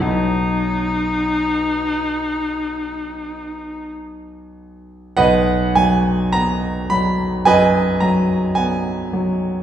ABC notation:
X:1
M:4/4
L:1/8
Q:1/4=50
K:B
V:1 name="Grand piano"
z8 | [Bdf] g a b [Bdg] a g2 |]
V:2 name="Grand piano" clef=bass
[B,,,F,B,D]8 | B,,, F, B, F, F,, F, B, F, |]
V:3 name="Viola"
D6 z2 | z8 |]